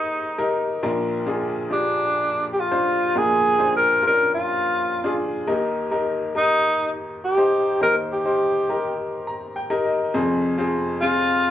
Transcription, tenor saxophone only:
0.00 0.55 D#4 medium
1.73 2.48 D4 medium
2.53 2.62 G4 medium
2.60 3.19 F4 loud
3.18 3.75 G#4 loud
3.76 4.02 A#4 loud
4.07 4.32 A#4 loud
4.34 5.17 F4 medium
6.37 6.91 D#4 loud
7.25 7.78 G4 loud
7.83 7.96 A#4 loud
8.13 8.95 G4 medium
11.01 11.51 F4 loud

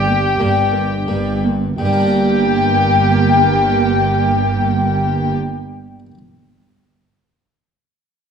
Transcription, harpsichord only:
0.00 0.30 G2 medium
0.00 1.73 A#3 soft
0.00 1.73 D4 soft
0.41 0.98 G2 medium
1.08 1.67 G2 medium
1.78 5.99 G2 medium
1.85 6.06 G3 medium
1.93 6.11 A#3 medium
1.99 6.14 D4 medium
2.06 6.18 A#4 medium

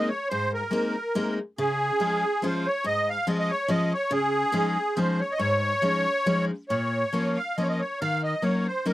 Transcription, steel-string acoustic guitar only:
0.31 0.62 G#2 medium
0.71 0.94 G#3 medium
0.71 0.94 A#3 soft
0.71 0.94 C4 soft
0.71 0.95 D#4 medium
1.15 1.38 G#3 medium
1.15 1.38 A#3 medium
1.15 1.38 C4 soft
1.15 1.38 D#4 medium
1.58 1.90 C#3 medium
2.00 2.23 F3 medium
2.00 2.23 G#3 soft
2.00 2.23 C#4 soft
2.00 2.23 F4 medium
2.42 2.65 F3 medium
2.42 2.65 G#3 soft
2.42 2.65 C#4 soft
2.42 2.66 F4 medium
2.84 3.17 G#2 medium
3.27 3.50 F3 medium
3.27 3.50 G#3 soft
3.27 3.50 C#4 soft
3.27 3.50 F4 medium
3.68 3.92 F3 medium
3.68 3.92 G#3 medium
3.68 3.92 C#4 soft
3.68 3.92 F4 medium
4.11 4.43 C#3 medium
4.52 4.76 F3 medium
4.52 4.77 G#3 medium
4.52 4.77 C#4 medium
4.52 4.77 D#4 medium
4.97 5.20 F3 medium
4.97 5.20 G#3 soft
4.97 5.20 C#4 soft
4.97 5.21 D#4 medium
5.39 5.72 G#2 medium
5.82 6.06 F3 medium
5.82 6.06 G#3 soft
5.82 6.06 C#4 soft
5.82 6.06 D#4 soft
6.26 6.50 F3 medium
6.26 6.50 G#3 medium
6.26 6.50 C#4 soft
6.26 6.50 D#4 medium
6.70 7.03 A#2 medium
7.13 7.36 F3 soft
7.13 7.37 A#3 medium
7.13 7.37 C#4 soft
7.13 7.37 F4 medium
7.58 7.81 F3 medium
7.58 7.81 A#3 medium
7.58 7.80 C#4 medium
7.58 7.81 F4 soft
8.02 8.33 D#3 medium
8.42 8.66 F#3 medium
8.42 8.66 A#3 soft
8.42 8.66 C#4 medium
8.42 8.66 D#4 medium
8.86 8.93 F#3 medium
8.86 8.93 A#3 medium
8.86 8.93 C#4 soft
8.86 8.93 D#4 medium

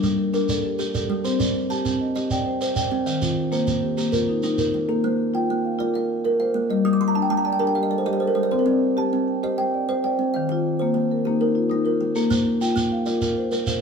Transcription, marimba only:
0.00 0.19 D4 medium
0.18 0.64 A#4 medium
0.34 0.64 D4 medium
0.50 0.93 A4 medium
0.65 0.78 G4 medium
0.80 1.10 G4 medium
0.94 1.40 A4 medium
1.25 1.55 C4 medium
1.39 1.85 D5 medium
1.70 2.01 G4 medium
2.01 2.46 D#5 medium
2.16 2.46 G4 medium
2.31 2.74 D5 medium
2.46 2.60 C5 medium
2.61 2.92 C5 medium
2.75 3.22 D5 medium
3.06 3.37 D#3 medium
3.22 3.67 F4 medium
3.52 3.83 A#3 medium
3.83 4.28 G4 medium
3.97 4.28 A#3 medium
4.13 4.59 F4 medium
4.29 4.42 D#4 medium
4.43 4.74 D#4 medium
4.89 5.19 A#3 medium
5.04 5.50 C5 medium
5.34 5.64 F4 medium
5.65 6.10 F5 soft
5.79 6.10 F4 medium
5.79 5.93 A#4 medium
5.94 6.23 A#4 medium
6.25 6.55 A#4 medium
6.40 6.86 C5 medium
6.70 7.01 G3 medium
7.15 7.46 D4 medium
7.46 7.92 D5 medium
7.60 7.91 D4 medium
7.60 7.75 G4 medium
7.76 8.05 G4 medium
7.91 8.21 A4 medium
8.06 8.37 G4 medium
8.22 8.68 A4 medium
8.52 8.82 C4 medium
8.67 9.13 D5 medium
8.97 9.28 G4 medium
9.28 9.73 G5 medium
9.43 9.74 G4 medium
9.43 9.57 C5 medium
9.59 9.88 C5 medium
9.74 10.04 D5 medium
9.89 10.19 C5 medium
10.05 10.50 D5 medium
10.36 10.66 D#3 medium
10.52 10.96 F4 medium
10.82 11.11 A#3 medium
11.11 11.56 A#4 medium
11.27 11.56 A#3 medium
11.27 11.39 D#4 medium
11.40 11.69 D#4 medium
11.55 11.84 F4 medium
11.70 12.01 D#4 medium
11.85 12.31 F4 medium
12.16 12.46 A#3 medium
12.31 12.76 C5 medium
12.61 12.92 F4 medium
12.92 13.37 F5 medium
13.07 13.37 F4 medium
13.07 13.21 A#4 medium
13.23 13.52 A#4 medium
13.37 13.66 C5 medium
13.53 13.81 A#4 medium
13.67 13.81 C5 medium

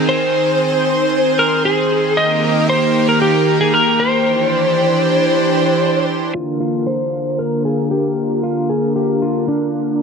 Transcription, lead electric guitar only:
0.09 1.43 C5 loud
1.39 1.63 A#4 medium
1.65 2.19 G#4 loud
2.17 2.69 D#5 loud
2.69 3.06 C5 loud
3.09 3.21 A#4 medium
3.22 3.58 G4 loud
3.61 3.74 G#4 medium
3.74 4.00 A#4 medium
4.00 6.05 C5 loud
6.35 6.59 F4 medium
6.61 6.88 F4 medium
6.87 7.41 C5 loud
7.39 7.65 A#4 medium
7.65 7.91 G#4 medium
7.91 8.40 G4 medium
8.43 8.70 F4 medium
8.70 8.95 G#4 medium
8.96 9.23 G4 medium
9.22 9.48 F4 medium
9.48 10.02 D4 medium

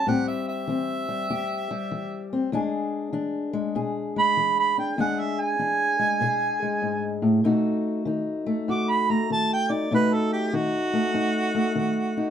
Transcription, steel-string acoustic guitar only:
0.07 0.63 A2 medium
0.07 1.07 G3 medium
0.07 0.68 C4 medium
0.07 1.29 G4 medium
0.67 1.24 E3 medium
0.67 2.31 C4 medium
1.09 1.69 G3 medium
1.30 1.87 E2 medium
1.30 2.50 G4 medium
1.71 2.53 G3 medium
1.91 2.48 E3 medium
2.33 2.50 C4 medium
2.52 3.09 E2 medium
2.52 3.53 G#3 medium
2.52 3.13 D4 medium
2.52 3.75 G#4 medium
3.13 3.70 E3 medium
3.13 4.76 D4 medium
3.53 4.15 G#3 medium
3.75 4.32 B2 medium
3.75 4.96 G#4 medium
4.16 4.96 G#3 medium
4.37 4.94 E3 medium
4.78 4.96 D4 medium
4.98 5.55 E2 medium
4.98 5.98 G#3 medium
4.98 5.58 D4 medium
4.98 6.21 G#4 medium
5.59 6.17 E3 medium
5.59 7.42 D4 medium
5.99 6.61 G#3 medium
6.21 6.78 B2 medium
6.21 7.42 G#4 medium
6.62 7.42 G#3 medium
6.82 7.22 G#2 medium
7.22 7.44 A2 medium
7.44 8.02 B2 medium
7.44 8.46 A3 medium
7.44 8.06 D#4 medium
7.44 8.69 F#4 medium
8.05 8.63 D#3 medium
8.05 9.68 D#4 medium
8.46 9.08 A3 medium
8.68 9.25 F#2 medium
8.68 9.89 F#4 medium
9.10 9.89 A3 medium
9.30 9.87 D#3 medium
9.70 9.88 D#4 medium
9.91 10.48 B2 medium
9.91 10.92 A3 medium
9.91 10.53 D#4 medium
9.91 12.30 F#4 medium
10.53 11.10 D#3 medium
10.53 11.13 D#4 medium
10.93 11.53 A3 medium
11.14 11.71 F#2 medium
11.14 12.15 D#4 medium
11.55 12.30 A3 medium
11.75 12.30 D#3 medium
12.17 12.30 D#4 medium

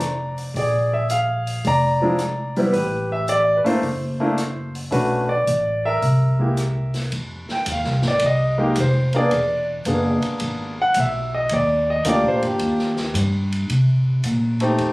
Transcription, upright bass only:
0.00 0.50 F1 medium
0.54 1.60 A#1 medium
1.65 2.70 F1 medium
2.74 3.62 A1 medium
3.65 muted upright bass stroke soft
3.82 4.88 F#1 medium
4.92 5.43 B1 medium
5.47 5.99 A1 medium
6.02 7.08 C2 medium
7.12 7.47 F2 medium
7.49 muted upright bass stroke soft
7.66 7.84 D#2 medium
7.84 8.02 C2 medium
8.03 8.20 G#1 medium
8.21 8.75 C2 medium
8.77 9.30 F1 medium
9.32 9.85 E1 medium
9.86 10.21 F#1 medium
10.41 10.94 G#1 medium
10.96 11.49 B1 medium
11.51 12.04 D#2 medium
12.05 12.25 D2 medium
12.23 12.42 A#1 medium
12.42 12.59 G1 medium
12.61 13.13 D#2 medium
13.14 13.68 G2 medium
13.70 14.23 C3 medium
14.24 14.78 A#2 medium
14.79 14.93 F2 medium

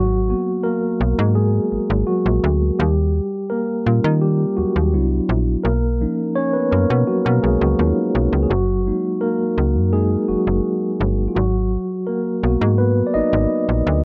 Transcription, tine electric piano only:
0.00 0.61 F#3 medium
0.00 0.29 F#4 loud
0.29 0.65 A#3 medium
0.29 0.77 B3 medium
0.29 0.77 F#4 medium
0.64 1.33 A#3 medium
0.64 1.38 A#4 loud
1.35 2.04 G#3 medium
1.35 2.09 G#4 loud
2.07 2.58 F#3 medium
2.07 2.57 F#4 medium
2.79 3.47 G3 medium
2.79 3.52 G4 medium
3.50 4.19 A#3 medium
3.50 4.18 A#4 loud
3.86 4.22 G3 medium
3.86 4.90 C#4 medium
3.86 4.90 F4 medium
4.21 4.56 G3 medium
4.21 4.58 G4 medium
4.57 4.92 F#3 medium
4.57 5.25 F#4 medium
4.93 5.41 F#3 medium
4.93 5.41 B3 medium
4.93 5.41 D4 medium
4.93 5.41 E4 medium
5.64 6.00 A#3 medium
5.64 6.38 A#4 loud
6.01 6.48 F3 medium
6.01 6.48 A#3 soft
6.01 6.37 C#4 medium
6.01 6.49 D#4 medium
6.35 6.54 C#4 medium
6.35 6.54 C#5 loud
6.53 6.71 B3 medium
6.53 6.72 B4 medium
6.71 7.06 A#3 medium
6.71 7.08 A#4 loud
7.07 7.25 F#3 medium
7.07 7.26 F#4 medium
7.25 7.43 A#3 medium
7.25 7.44 A#4 medium
7.43 7.61 G#3 medium
7.43 7.61 G#4 medium
7.61 8.12 F#3 medium
7.61 8.11 F#4 medium
7.79 8.12 A#3 soft
7.79 8.12 C#4 soft
7.79 8.12 D#4 medium
7.79 8.11 F4 medium
8.43 8.50 G#4 medium
8.50 9.19 F#3 medium
8.50 9.24 F#4 medium
8.86 9.92 G#3 medium
8.86 9.22 A#3 medium
8.86 9.93 D#4 medium
9.21 9.90 A#3 medium
9.21 9.89 A#4 loud
9.93 10.27 G#3 medium
9.93 10.26 A#3 soft
9.93 10.26 D#4 medium
9.93 10.30 G#4 loud
10.28 10.97 F#3 medium
10.28 10.96 F#4 medium
11.28 11.36 F4 medium
11.35 12.04 F#3 medium
11.35 12.09 F#4 medium
12.07 12.42 A#3 medium
12.07 12.81 A#4 medium
12.43 12.91 A#3 medium
12.43 12.79 B3 medium
12.43 12.91 F#4 medium
12.78 13.07 B3 medium
12.78 13.08 B4 loud
13.07 13.14 D5 medium
13.14 13.83 D#4 medium
13.14 13.82 D#5 loud

